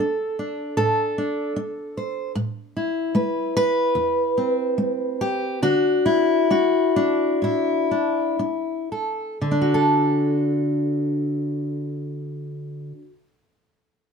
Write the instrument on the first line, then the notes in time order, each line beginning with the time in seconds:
steel-string acoustic guitar
Already playing: A4
0.00 D4
0.39 D4
0.77 A2 A4
1.18 D4
1.56 D4
1.97 C5
2.35 A2
2.77 E4
3.15 A3 B4
3.57 B4
3.95 E2
4.38 C4
4.78 A3
5.21 G4
5.62 D3 D4 F#4
6.06 E4
6.50 D4 F#4
6.96 D4
7.42 A2 E4
7.91 D4
8.39 D4
8.92 A4
9.41 D3
9.51 D4
9.61 F#4
9.74 A4